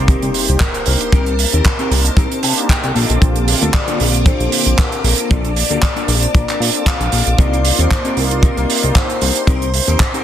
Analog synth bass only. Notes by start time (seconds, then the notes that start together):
Already playing: C2
0.22 C2
0.49 C2
0.87 C2
1.12 C2
1.53 D#2
1.91 C2
2.17 C2
2.43 C3
2.84 C2
2.95 A#1
3.09 A#1
3.22 A#1
3.62 D2
4.00 A#1
4.40 A#1
4.66 A#1
5.04 A#1
5.31 A#1
5.70 D2
6.08 A#1
6.35 A#1
6.60 A#2
7.00 A#1
7.12 A#1
7.26 A#1
7.39 C2
7.79 D#2
8.17 C2
8.57 C2
8.83 C2
9.21 C2
9.47 C2
9.88 D#2